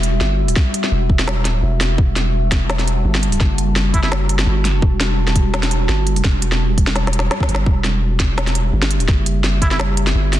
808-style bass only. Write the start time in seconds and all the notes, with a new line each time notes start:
Already playing: E1
0.21 G1
0.92 E1
1.41 D#1
1.63 E1
1.98 E1
3.05 G1
3.40 F#1
4.47 G1
5.89 G1
7.49 G1
7.66 E1
8.73 G1
9.08 F#1
10.15 G1